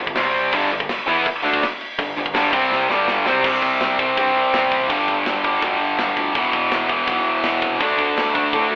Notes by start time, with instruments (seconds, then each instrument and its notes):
Already playing: picked electric bass G1
0.00 distorted electric guitar G2 D3
0.07 kick
0.15 picked electric bass C2, distorted electric guitar C3 G3 C4, snare, crash
0.34 crash
0.52 picked electric bass G1, distorted electric guitar G2 D3 G3, kick, crash
0.71 picked electric bass G1, distorted electric guitar G2 D3, crash
0.80 kick
0.89 snare, crash
1.06 picked electric bass E2, distorted electric guitar E3 B3 E4, crash
1.25 muted distorted electric guitar stroke, muted picked electric bass stroke, kick, crash
1.42 picked electric bass D2, distorted electric guitar D3 A3 D4, crash
1.53 kick
1.63 snare, crash
1.81 crash
1.99 picked electric bass G1, distorted electric guitar G2 D3, kick, crash
2.16 picked electric bass G1, distorted electric guitar G2 D3, crash
2.26 kick
2.34 picked electric bass G1, distorted electric guitar G2 D3 G3, snare, crash
2.53 picked electric bass C2, distorted electric guitar C3 G3 C4, kick, crash
2.72 snare
2.90 picked electric bass G1, distorted electric guitar G2 D3 G3, snare
3.08 snare
3.25 picked electric bass C2, distorted electric guitar C3 G3 C4, snare
3.43 picked electric bass C2, distorted electric guitar C3 G3 C4, kick, crash
3.62 picked electric bass C2, kick
3.81 picked electric bass C2, snare, crash
3.99 picked electric bass C2, distorted electric guitar C3 G3 C4, kick
4.16 picked electric bass G2, distorted electric guitar C3 G3 C4, kick, crash
4.37 picked electric bass C2
4.54 picked electric bass C2, snare, crash
4.71 picked electric bass A1, kick
4.87 picked electric bass G1, distorted electric guitar G2 D3 G3, kick, crash
5.08 picked electric bass G1, kick
5.26 picked electric bass G1, snare, crash
5.44 picked electric bass G1, distorted electric guitar G2 D3 G3, kick
5.59 picked electric bass D2, distorted electric guitar G2 D3, kick, crash
5.63 distorted electric guitar G3
5.81 picked electric bass G1
5.99 picked electric bass G1, snare, crash
6.17 picked electric bass D2, kick
6.34 picked electric bass E1, distorted electric guitar E2 B2 E3, kick, crash
6.53 picked electric bass E1, kick
6.72 picked electric bass E1, snare, crash
6.89 picked electric bass E1, distorted electric guitar E2 B2 E3, kick
7.07 picked electric bass B1, distorted electric guitar E2 B2 E3, kick, crash
7.27 picked electric bass E1
7.44 picked electric bass E1, snare, crash
7.62 picked electric bass C2, kick
7.79 picked electric bass D2, distorted electric guitar D3 A3 D4, kick, crash
7.99 picked electric bass D2, kick
8.17 picked electric bass D2, snare, crash
8.34 picked electric bass D2, distorted electric guitar D3 A3 D4, kick
8.52 picked electric bass A2, distorted electric guitar D3 A3 D4, kick, crash
8.71 picked electric bass D2